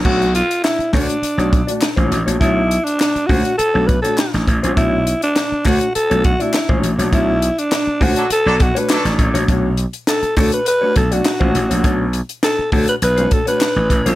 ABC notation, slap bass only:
X:1
M:4/4
L:1/16
Q:1/4=102
K:Bm
V:1 name="Slap bass" clef=bass
B,,,3 z3 D,, z2 B,,,2 z2 A,,, A,,, ^A,,, | B,,,3 z3 D,, z2 B,,,2 z2 A,,, A,,, ^A,,, | B,,,3 z3 D,, z2 B,,,2 z2 A,,, A,,, ^A,,, | B,,,3 z3 D,, z2 B,,,2 z2 A,,, A,,, ^A,,, |
B,,,3 z3 D,, z3 B,,,2 z A,,, A,,, ^A,,, | B,,,3 z3 D,, z B,,,2 z3 A,,, A,,, ^A,,, |]